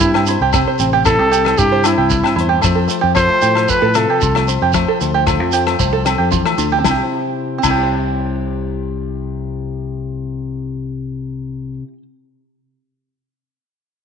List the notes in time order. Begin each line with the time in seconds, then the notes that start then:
Already playing: G2 C4 E4 G4 C5
0.00 G2 E4, kick, shekere
0.14 C4, cross-stick, low agogo
0.26 E4, closed hi-hat, shekere
0.31 C5
0.40 C2 G4
0.53 C3 C4 C5, kick, cross-stick, low agogo, shekere
0.67 C5
0.79 A1 C4, closed hi-hat, shekere
0.93 G4
1.05 C4 E4 A4, kick, cross-stick, low agogo, shekere
1.19 C2 C4
1.31 G4, closed hi-hat, shekere
1.45 C4, cross-stick, low agogo
1.58 G2 C4 E4 G4, kick, shekere
1.72 C5
1.84 G2 C4 E4, cross-stick, closed hi-hat, low agogo, shekere
1.98 C2 G4
2.10 E4, kick, shekere
2.23 C4, cross-stick, low agogo
2.36 E2 E4, closed hi-hat
2.41 C5
2.49 G4
2.61 F2 F3 A3 C5, kick, cross-stick, low agogo, shekere
2.75 A4
2.88 A3 C5, closed hi-hat, shekere
3.01 F2 G4
3.15 F4 A4 C5, muted five-string banjo stroke, kick, cross-stick, low agogo, shekere
3.29 A3
3.42 A2 G4 A4, closed hi-hat, shekere
3.55 A3, cross-stick, low agogo
3.69 A3 A4 B4, kick, shekere
3.82 A2 A4
3.94 C3 A3 F4 A4, cross-stick, closed hi-hat, low agogo, shekere
4.10 G4
4.21 C2 F4, kick, shekere
4.35 A3, cross-stick, low agogo
4.48 C5, muted five-string banjo stroke, closed hi-hat, shekere
4.62 F2 G4
4.73 F3 A3 C5, kick, cross-stick, low agogo, shekere
4.88 A4
5.01 D2 A3 C5, closed hi-hat, shekere
5.14 G4
5.26 F4 A4, kick, cross-stick, low agogo, shekere
5.40 F2 A3
5.52 G4 C5, closed hi-hat, shekere
5.67 A3, cross-stick, low agogo
5.79 C2 A3 C5, kick, shekere
5.93 A4
6.05 C4 A4, muted clean electric guitar stroke, cross-stick, closed hi-hat, low agogo, shekere
6.18 F2 G4
6.31 E3 F4, kick, shekere
6.46 A3, cross-stick, low agogo
6.58 D2 D3 F4, closed hi-hat, shekere
6.72 G4
6.79 C4
6.84 C2 C3 E4, kick, snare, low agogo, shekere
6.89 C4 G4
6.94 E4
6.98 G4
7.03 C5
7.58 C4
7.63 C2 C3 E4, kick, crash, low agogo, shekere
7.68 C4 G4
7.73 E4
7.78 G4
7.83 C5